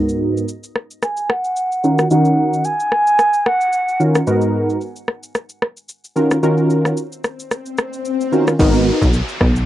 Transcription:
0.00 0.45 G#2 medium
0.00 0.45 B3 medium
0.00 0.45 D#4 medium
0.00 0.45 F#4 medium
0.00 0.45 A#4 loud
0.09 shaker medium
0.37 shaker medium
0.48 shaker medium
0.63 shaker medium
0.76 cross-stick medium
0.91 shaker medium
1.02 1.32 G#5 loud
1.02 cross-stick medium
1.02 shaker medium
1.17 shaker medium
1.30 2.11 F#5 loud
1.30 cross-stick loud
1.44 shaker soft
1.56 shaker medium
1.72 shaker soft
1.84 2.05 D#3 medium
1.84 2.05 C#4 medium
1.84 2.05 F4 medium
1.84 2.05 F#4 medium
1.84 2.05 A#4 medium
1.84 shaker soft
1.98 cross-stick medium
1.98 shaker medium
2.11 2.61 D#3 medium
2.11 2.61 C#4 medium
2.11 2.61 D#4 medium
2.11 2.61 F#4 medium
2.11 2.61 A#4 loud
2.11 2.67 F#5 loud
2.11 shaker medium
2.25 shaker medium
2.53 shaker medium
2.65 3.48 G#5 loud
2.65 shaker medium
2.80 shaker medium
2.92 cross-stick medium
3.07 shaker medium
3.19 cross-stick medium
3.19 shaker medium
3.33 shaker medium
3.46 4.00 F#5 medium
3.46 cross-stick loud
3.61 shaker soft
3.73 shaker medium
3.88 shaker soft
4.00 4.21 D#3 medium
4.00 4.21 C#4 medium
4.00 4.21 F4 medium
4.00 4.21 F#4 medium
4.00 4.21 A#4 medium
4.00 shaker soft
4.15 cross-stick loud
4.15 shaker medium
4.27 4.77 G#2 medium
4.27 4.77 B3 medium
4.27 4.77 D#4 medium
4.27 4.77 F#4 medium
4.27 4.77 A#4 loud
4.27 shaker medium
4.41 shaker medium
4.70 shaker medium
4.81 shaker medium
4.96 shaker medium
5.08 cross-stick medium
5.23 shaker medium
5.35 cross-stick medium
5.35 shaker medium
5.49 shaker medium
5.62 cross-stick medium
5.77 shaker soft
5.89 shaker medium
6.04 shaker soft
6.16 6.37 D#3 medium
6.16 6.37 C#4 medium
6.16 6.37 F4 medium
6.16 6.37 F#4 medium
6.16 6.37 A#4 medium
6.16 shaker soft
6.31 cross-stick medium
6.31 shaker medium
6.43 6.93 D#3 medium
6.43 6.93 C#4 medium
6.43 6.93 F4 medium
6.43 6.93 F#4 medium
6.43 6.93 A#4 loud
6.43 swell medium
6.43 shaker medium
6.58 shaker soft
6.70 shaker medium
6.85 cross-stick medium
6.85 shaker medium
6.97 shaker medium
7.12 shaker medium
7.24 cross-stick medium
7.24 shaker soft
7.40 shaker medium
7.51 cross-stick medium
7.51 shaker medium
7.66 shaker medium
7.78 cross-stick loud
7.78 shaker soft
7.93 shaker soft
8.05 shaker medium
8.21 shaker soft
8.32 8.53 D#3 medium
8.32 8.53 C#4 medium
8.32 8.53 F4 medium
8.32 8.53 F#4 medium
8.32 8.53 A#4 medium
8.32 shaker soft
8.47 cross-stick loud
8.47 shaker medium
8.59 8.91 G#1 loud
8.59 9.09 B3 loud
8.59 9.10 D#4 medium
8.59 9.10 F#4 medium
8.59 9.10 A#4 loud
8.59 kick loud
8.59 downlifter medium
8.59 shaker medium
8.74 shaker medium
9.02 9.22 B1 medium
9.02 kick medium
9.02 shaker medium
9.13 shaker medium
9.29 shaker medium
9.41 9.66 B1 loud
9.41 kick medium
9.41 cross-stick medium
9.56 shaker medium

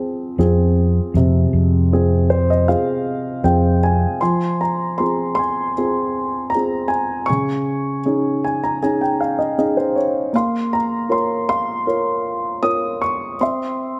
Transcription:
0.00 1.11 F3 medium
0.00 0.39 C4 soft
0.00 0.39 F4 soft
0.00 0.40 G#4 soft
0.38 0.99 F2 medium
0.38 1.12 C4 soft
0.38 1.13 F4 soft
0.38 1.13 G#4 soft
1.14 1.44 F2 medium
1.14 4.17 C3 medium
1.53 2.74 F2 medium
1.93 2.66 C4 soft
1.93 2.65 F4 soft
1.93 2.66 G#4 medium
2.30 2.47 C5 medium
2.50 2.67 D#5 medium
2.68 3.41 C4 soft
2.68 3.42 F4 soft
2.68 3.42 G#4 soft
2.68 3.40 F5 medium
3.44 4.05 F2 medium
3.44 4.19 C4 soft
3.44 4.19 F4 soft
3.44 4.19 G#4 soft
3.44 3.80 G5 medium
3.83 4.19 G#5 medium
4.21 7.25 F3 medium
4.21 5.37 G#5 soft
4.21 4.61 C6 medium
4.61 5.00 A#5 medium
4.98 5.73 C4 soft
4.98 5.74 F4 soft
4.98 5.74 G#4 soft
4.98 5.33 C6 medium
5.35 6.54 C6 medium
5.39 6.87 G#5 soft
5.78 6.51 C4 soft
5.78 6.51 F4 soft
5.78 6.51 G#4 soft
6.50 6.90 A#5 medium
6.55 7.27 C4 soft
6.55 7.28 F4 soft
6.55 7.28 G#4 soft
6.88 7.24 G#5 medium
7.26 10.30 C#3 soft
7.26 8.43 G#5 soft
7.26 7.99 C#6 medium
8.05 8.79 C#4 soft
8.05 8.79 D#4 soft
8.05 8.79 G#4 soft
8.44 8.61 G#5 medium
8.63 8.80 A#5 medium
8.82 9.55 C#4 soft
8.82 9.56 D#4 soft
8.82 9.56 G#4 soft
8.82 8.99 G#5 medium
9.01 9.18 G5 soft
9.20 9.37 F5 soft
9.38 9.56 D#5 soft
9.58 10.32 C#4 soft
9.58 10.32 D#4 soft
9.58 10.32 G#4 soft
9.58 9.76 D#5 soft
9.77 9.94 C5 medium
9.96 10.31 C#5 medium
10.33 13.36 A#3 medium
10.33 11.48 F5 soft
10.33 10.74 C6 medium
10.73 11.12 A#5 medium
11.09 11.84 F4 soft
11.09 11.84 A#4 soft
11.09 11.84 C#5 soft
11.09 11.47 C6 medium
11.49 12.98 F5 soft
11.49 12.67 C6 medium
11.87 12.61 F4 soft
11.87 12.61 A#4 soft
11.87 12.61 C#5 soft
12.63 13.38 F4 soft
12.63 13.38 A#4 soft
12.63 13.38 C#5 soft
12.63 13.03 D#6 medium
13.02 13.41 C#6 medium
13.41 14.00 C4 soft
13.41 14.00 E5 soft
13.41 14.00 C6 medium

